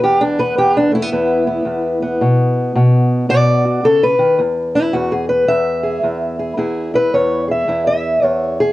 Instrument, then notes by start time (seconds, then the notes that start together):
steel-string acoustic guitar
0.03 E2 G4
0.21 D4
0.39 B3 B4
0.57 E2 G4
0.77 D4
0.91 A3 E4
1.02 B3
1.12 E2 B3
1.47 B3
1.65 E2
2.02 B3
2.21 B2
2.75 B2
3.29 B2 D5
3.65 F#4
3.84 C#3 A4
4.03 B4
4.19 D#3
4.39 E2
4.75 E4
4.93 E2 F#4
5.12 G#4
5.29 B4
5.48 E2 E5
5.83 G#4
6.03 E2
6.39 G#4
6.57 E2 E4 G#4
6.94 E4 B4
7.14 E2 C#5
7.48 G#4 E5
7.68 E2 E4
7.87 E5
8.23 E2 C#5
8.60 G#4